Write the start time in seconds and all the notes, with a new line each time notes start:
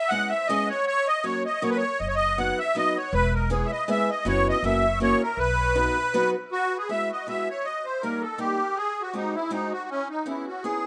Already playing: E5
0.09 G#3 B3 C#4 E4 G#4 F#5
0.29 E5
0.47 G#3 B3 C#4 E4 G#4 D#5
0.70 C#5
0.87 C#5
1.08 D#5
1.24 F#3 A#3 C#4 F#4 A#4 C#5
1.46 D#5
1.62 F#3 A#3 C#4 F#4 A#4 C#5
1.70 B4
1.77 C#5
2.00 F#1 D#5
2.08 C#5
2.16 D#5
2.38 F#3 B3 D#4 F#4 B4 F#5
2.59 E5
2.75 F#3 B3 D#4 F#4 B4 D#5
2.97 C#5
3.13 E1 B4
3.34 A#4
3.50 G#3 B3 E4 G#4 B4
3.66 E5
3.72 D#5
3.88 G#3 B3 E4 G#4 B4 E5
4.10 D#5
4.25 F#1 B3 C#4 E4 F#4 B4 C#5
4.49 D#5
4.63 F#1 A#3 C#4 E4 F#4 A#4 E5
5.00 A#3 C#4 E4 F#4 A#4 C#5
5.23 A#4
5.37 B1 B4
5.75 F#3 B3 D#4 F#4 B4
6.14 F#3 B3 D#4 F#4 B4
6.52 F#4
6.78 G#4
6.89 G#3 B3 E4 F#4 E5
7.12 D#5
7.27 G#3 B3 E4 F#4 E5
7.50 C#5
7.65 D#5
7.85 C5
8.02 G3 A#3 D#4 G4 A#4
8.21 A4
8.38 G3 A#3 D#4 G4
8.77 G#4
9.02 F#4
9.13 G#3 C4 D#4 F#4
9.35 E4
9.50 G#3 C4 D#4 F#4
9.72 F#4
9.90 C#4
10.10 D#4
10.26 B3 C#4 E4 G#4
10.46 F#4
10.64 B3 C#4 E4 G#4